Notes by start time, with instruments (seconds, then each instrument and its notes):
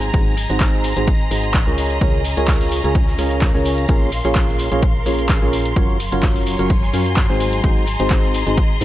Already playing: fm bass G#1, synth stab G#2 C4 D#4 F#4 G#4 C5, string section F#3 G#4 G#5 A#5, string machine A#5
0.03 closed hi-hat, shaker
0.14 fm bass G#1, synth stab G#2 C4 D#4 F#4 G#4 C5, kick, closed hi-hat, ride, shaker
0.26 string section D#5, shaker
0.37 open hi-hat, ride
0.50 fm bass G#1, synth stab G#2 C4 D#4 F#4 G#4 C5, snare, closed hi-hat, shaker
0.60 kick, snare, clap, closed hi-hat, ride, shaker
0.73 string section C6, snare, shaker
0.84 snare, open hi-hat, ride
0.97 fm bass G#1, synth stab G#2 C4 D#4 F#4 G#4 C5, closed hi-hat, shaker
1.07 kick, closed hi-hat, ride, shaker
1.21 shaker
1.31 fm bass G#1, synth stab G#2 C4 D#4 F#4 G#4 C5, open hi-hat, ride
1.44 closed hi-hat, shaker
1.54 kick, snare, clap, closed hi-hat, ride, shaker
1.67 fm bass C#2, synth stab C#3 C#4 F4 G#4 A#4 C#5, ride, shaker
1.78 string section C#4, open hi-hat, ride
1.90 closed hi-hat, shaker
2.01 fm bass C#2, synth stab C#3 C#4 F4 G#4 A#4 C#5, kick, closed hi-hat, ride, shaker
2.15 shaker
2.24 open hi-hat, ride
2.37 fm bass C#2, synth stab C#3 C#4 F4 G#4 A#4 C#5, closed hi-hat, shaker
2.48 kick, snare, clap, closed hi-hat, ride, shaker
2.55 string section F5
2.61 open hi-hat, shaker
2.72 open hi-hat, ride
2.84 fm bass C#2, synth stab C#3 C#4 F4 G#4 A#4 C#5, closed hi-hat, shaker
2.95 kick, closed hi-hat, ride, shaker
3.07 snare, shaker
3.18 fm bass C#2, synth stab C#3 C#4 F4 G#4 A#4 C#5, snare, open hi-hat, ride
3.31 closed hi-hat, shaker
3.41 kick, snare, clap, closed hi-hat, ride, shaker
3.54 fm bass C#2, synth stab C#3 C#4 F4 G#4 A#4 C#5, snare, shaker
3.65 open hi-hat
3.78 closed hi-hat, shaker
3.89 fm bass A#1, synth stab A#2 C#4 F4 G#4 A#4 C#5, string section A#4, string machine C6, kick, closed hi-hat, ride, shaker
4.02 shaker
4.12 open hi-hat, ride
4.25 fm bass A#1, synth stab A#2 C#4 F4 G#4 A#4 C#5, snare, closed hi-hat, shaker
4.35 kick, snare, clap, closed hi-hat, ride, shaker
4.48 snare, shaker
4.58 snare, open hi-hat, ride
4.72 fm bass A#1, synth stab A#2 C#4 F4 G#4 A#4 C#5, closed hi-hat, shaker
4.82 kick, closed hi-hat, ride, shaker
4.96 shaker
5.06 fm bass A#1, synth stab A#2 C#4 F4 G#4 A#4 C#5, open hi-hat, ride
5.19 closed hi-hat, shaker
5.29 kick, snare, clap, closed hi-hat, ride, shaker
5.42 fm bass A#1, synth stab A#2 C#4 F4 G#4 A#4 C#5, ride, shaker
5.53 open hi-hat, ride
5.65 closed hi-hat, shaker
5.76 fm bass F#1, string section F#3, synth stab F#3 C#4 F4 F#4 A#4 C#5, kick, closed hi-hat, ride, shaker
5.90 shaker
5.99 string section C#5, open hi-hat, ride
6.12 fm bass F#1, synth stab F#3 C#4 F4 F#4 A#4 C#5, closed hi-hat, shaker
6.23 string section A#5, kick, snare, clap, closed hi-hat, ride, shaker
6.36 open hi-hat, shaker
6.47 string section G#5, open hi-hat, ride
6.59 fm bass F#1, synth stab F#3 C#4 F4 F#4 A#4 C#5, closed hi-hat, shaker
6.70 kick, closed hi-hat, ride, shaker
6.83 snare, shaker
6.93 fm bass F#2, synth stab F#3 C#4 F4 F#4 A#4 C#5, snare, open hi-hat, ride
7.06 closed hi-hat, shaker
7.16 kick, snare, clap, closed hi-hat, ride, shaker
7.29 fm bass G#1, synth stab G#2 C4 D#4 F#4 G#4 C5, snare, shaker
7.40 string section G#4, open hi-hat
7.53 closed hi-hat, shaker
7.64 fm bass G#1, synth stab G#2 C4 D#4 F#4 G#4 C5, kick, closed hi-hat, ride, shaker
7.77 shaker
7.86 string section D#5, open hi-hat, ride
8.00 fm bass G#1, synth stab G#2 C4 D#4 F#4 G#4 C5, snare, closed hi-hat, shaker
8.10 kick, snare, clap, closed hi-hat, ride, shaker
8.24 string section C6, snare, shaker
8.34 snare, open hi-hat, ride
8.47 fm bass G#1, synth stab G#2 C4 D#4 F#4 G#4 C5, closed hi-hat, shaker
8.58 kick, closed hi-hat, ride, shaker
8.71 shaker
8.81 synth stab G#2 C4 D#4 F#4 G#4 C5, fm bass G#2, open hi-hat